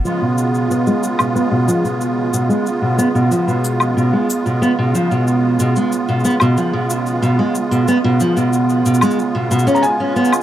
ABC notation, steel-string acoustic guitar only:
X:1
M:4/4
L:1/16
Q:1/4=92
K:Dbmix
V:1 name="Steel-string acoustic guitar" clef=bass
F, C,3 C, A, z C, C C, F, C,3 C, A, | z C, C C, F, C,3 C, A, z C, C C, F, C,- | C,2 C, A, z C, C C, F, C,3 C, A, z C, | C C, F, C,3 C, A, z C, C, D z D C z |]